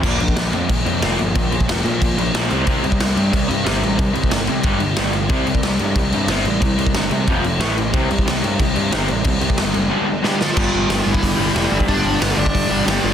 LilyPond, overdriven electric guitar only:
\new Staff \with { instrumentName = "Overdriven electric guitar" } { \clef bass \time 4/4 \key c \major \tempo 4 = 182 <bes, f bes>8 <bes, f>8 <bes, f>8 <bes, f>8 <bes, f>8 <bes, f>8 <bes, f bes>8 <bes, f>8 | <bes, f>8 <bes, f>8 <bes, f>8 <bes, f>8 <bes, f>8 <bes, f>8 <bes, f bes>8 <c g c'>8 | <c g c'>8 <c g>8 <c g>8 <c g>8 <c g>8 <c g>8 <c g c'>8 <c g>8 | <c g>8 <c g>8 <c g>8 <c g>8 <g, d g>8 <g, d>8 <g, d g>8 <g, d>8 |
<c g c'>8 <c g>8 <c g>8 <c g>8 <c g>8 <c g>8 <c g c'>8 <c g>8 | <c g>8 <c g>8 <c g>8 <c g>8 <f, c f>8 <f, c>8 <a, e a>8 <a, e>8 | <c g c'>8 <c g>8 <c g>8 <c g>8 <c g>8 <c g>8 <c g c'>8 <c g>8 | <c g>8 <c g>8 <c g>8 <c g>8 <g, d g>8 <g, d>8 <g, d g>8 <g, d>8 |
<g, d g>2~ <g, d g>8 <g, d g>8 <g, d g>4 | <g, d g>2~ <g, d g>8 <g, d g>8 <g, d g>4 | }